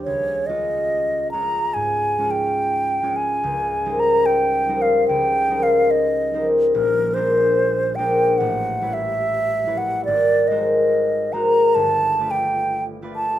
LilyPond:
<<
  \new Staff \with { instrumentName = "Flute" } { \time 4/4 \key aes \major \tempo 4 = 72 des''8 ees''4 bes''8 \tuplet 3/2 { aes''4 g''8~ g''4 aes''8~ } | \tuplet 3/2 { aes''4 bes''8 g''4 f''8 g''4 f''8 } ees''8 r8 | bes'8 c''4 g''8 \tuplet 3/2 { ges''4 e''8~ e''4 ges''8 } | d''8 ees''4 bes''8 \tuplet 3/2 { a''4 g''8~ g''4 a''8 } | }
  \new Staff \with { instrumentName = "Harp" } { \time 4/4 \key aes \major des,8 <aes des' f' des''>4 <aes des' f' des''>8 aes,8 <aes des' f' des''>4 <aes des' f' des''>8 | des,8 <g ees' bes' c''>4 <g ees' bes' c''>8 des,8 <g ees' bes' c''>4 <g ees' bes' c''>8 | bes,,8 <aes d' bes' c''>4 <aes d' bes' c''>8 a,,8 <g e' b' cis''>4 <g e' b' cis''>8 | aes,,8 <aes ges' bes' c''>4 <aes ges' bes' c''>8 g,,8 <a f' b' d''>4 <a f' b' d''>8 | }
>>